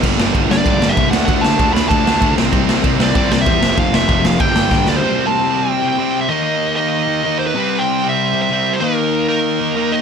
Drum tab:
CC |x-------|--------|--------|--------|
RD |--x-x-x-|x-x-x-x-|x-x-x-x-|x-x-x---|
SD |-o-o-o-o|-o-o-o-o|-o-o-o-o|-o-o-ooo|
BD |o-o-o-o-|o-o-o-o-|o-o-o-o-|o-o-o-o-|

CC |--------|--------|--------|--------|
RD |--------|--------|--------|--------|
SD |--------|--------|--------|--------|
BD |--------|--------|--------|--------|